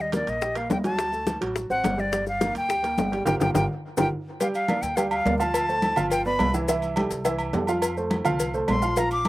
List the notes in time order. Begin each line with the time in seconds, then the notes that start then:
Already playing: D#2
0.00 D#5, high bongo
0.12 A#3 A#4 D5, high bongo, high conga, high timbale, low timbale, maracas
0.27 A#1 D#5, high timbale, maracas
0.42 G4 G5, high bongo, high conga, maracas
0.55 A#3 A#4 F5, high bongo, high conga, high timbale, maracas
0.70 D2 G5, high bongo, low bongo, high conga, low timbale, maracas
0.84 F#3 F#4 A5, high bongo, high conga, high timbale, maracas
0.99 high bongo, high conga, high timbale, maracas
1.13 A3 A4, high bongo, high conga, maracas
1.27 high bongo, high conga, high timbale, low timbale, maracas
1.41 A1 F#3 F#4, high conga, high timbale, maracas
1.56 high bongo, high conga, maracas
1.70 A1 C4 C5 F#5, high bongo, high conga, maracas
1.84 G1, high bongo, low bongo, high conga, high timbale, low timbale, maracas
1.98 G3 G4 D5, high bongo, high conga, maracas
2.12 G3 G4, high bongo, high conga, high timbale, maracas
2.27 F5, high bongo, high conga, maracas
2.41 A#3 A#4, high bongo, high conga, high timbale, low timbale, maracas
2.55 D2 G5, high timbale, maracas
2.69 G4 G5, high bongo, high conga, maracas
2.83 A#3 A#4, high bongo, high conga, high timbale, maracas
2.98 G1, high bongo, low bongo, high conga, low timbale, maracas
3.12 G3 G4, high bongo, high timbale, maracas
3.25 G1 F4 G4 A#4 G5, low bongo, low conga, high timbale, maracas
3.40 G1 F4 G4 A#4 G5, low bongo, low conga, high timbale, maracas
3.55 G1 F4 G4 A#4 G5, low bongo, low conga, high timbale, maracas
3.97 G1 F4 G4 A#4 G5, low bongo, low conga, high timbale, maracas
4.40 G3 G4 F5 G5, cowbell, high conga, low agogo, maracas
4.54 F5, high conga, low agogo, maracas
4.68 A#3 A#4 D5, cowbell, high conga, low timbale, low agogo, maracas
4.82 D2 G5, cowbell, high conga, maracas
4.96 G3 G4 F5 G5, cowbell, high conga, low agogo, maracas
5.10 F5, high conga, low agogo, maracas
5.25 D2 A#3 A#4 D5, cowbell, high conga, low timbale, maracas
5.38 F3 F4 F5 A5, high conga, low agogo, maracas
5.54 cowbell, high conga, low agogo, maracas
5.69 A3 A4 C5, high conga, maracas
5.82 cowbell, high conga, low timbale, low agogo, maracas
5.96 G1 F3 F4 F5, high conga, low conga, low agogo, maracas
6.10 G5, cowbell, high conga, low agogo, maracas
6.26 B3 B4 D5 B5, high conga, maracas
6.39 C2, cowbell, high conga, low timbale, low agogo, maracas
6.54 E3 E4 E5, high conga, maracas
6.68 E3 E4 E5, cowbell, low agogo, maracas
6.82 high conga, low agogo, maracas
6.96 G3 G4 A4, cowbell, high conga, low timbale, low agogo, maracas
7.10 C2, cowbell, high conga, maracas
7.25 E3 E4 E5, cowbell, high conga, low agogo, maracas
7.39 high conga, low agogo, maracas
7.53 F2 G3 G4 A4, cowbell, high conga, low timbale, maracas
7.67 F3 F4 F5, high conga, low agogo, maracas
7.82 cowbell, high conga, low agogo, maracas
7.97 A3 A4 C5, high conga, maracas
8.10 cowbell, high conga, low timbale, low agogo, maracas
8.24 C2 F3 F4 F5, high conga, low conga, low agogo, maracas
8.39 cowbell, high conga, low agogo, maracas
8.54 A3 A4 C5, high conga, maracas
8.68 A#1 C6, cowbell, high conga, low timbale, low agogo, maracas
8.82 F3 F4 F5, high conga, maracas
8.96 F3 F4 F5 A#5, cowbell, high conga, low agogo, maracas
9.11 D6, high conga, low agogo, maracas
9.25 A3, high conga, low timbale, low agogo, maracas